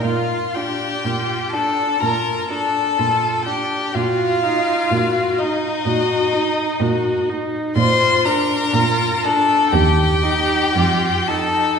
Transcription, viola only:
\new Staff \with { instrumentName = "Viola" } { \time 4/4 \key bes \major \tempo 4 = 62 f'8 d'8 f'8 d'8 f'8 d'8 f'8 d'8 | ges'8 ees'8 ges'8 ees'8 ges'8 ees'8 ges'8 ees'8 | f'8 d'8 f'8 d'8 g'8 ees'8 f'8 ees'8 | }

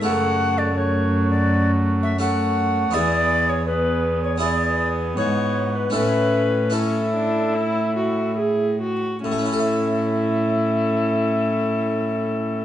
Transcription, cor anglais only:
\new Staff \with { instrumentName = "Cor anglais" } { \time 4/4 \key a \major \tempo 4 = 76 fis'4 fis'2 fis'4 | gis'4 gis'4 gis'4 fis'4 | e'8 r8 e'2~ e'8 r8 | e'1 | }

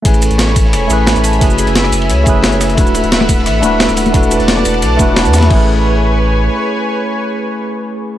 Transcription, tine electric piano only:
\new Staff \with { instrumentName = "Tine electric piano" } { \time 4/4 \key a \major \tempo 4 = 176 <a cis' e' b' gis''>2~ <a cis' e' b' gis''>8 <a cis' e' gis' b'>4. | <a cis' e' gis' b'>2~ <a cis' e' gis' b'>8 <a cis' e' gis' b'>4. | <a d' e' fis' b'>2~ <a d' e' fis' b'>8 <a d' e' fis' b'>4. | <a d' e' fis' b'>2~ <a d' e' fis' b'>8 <a d' e' fis' b'>4. |
<a cis' e' gis' b'>1~ | <a cis' e' gis' b'>1 | }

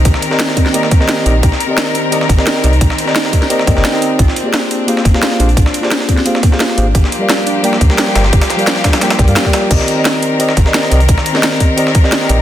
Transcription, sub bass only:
\new Staff \with { instrumentName = "Sub bass" } { \clef bass \time 4/4 \key c \minor \tempo 4 = 174 c,16 r2. r16 bes,,8 | c,16 r2 r16 g,,16 r8. c,8 | c,16 r2 r16 ees,16 g,,16 r4 | bes,,16 r2 r16 f,,16 r8. bes,,8 |
bes,,16 r2. r16 aes,,8 | g,,16 r2 r16 d,16 r8. g,,8 | g,,16 r2 r16 bes,,16 g,16 r4 | c,16 r2 r16 g,,16 r8. c,8 |
c,16 r2. r16 bes,,8 | }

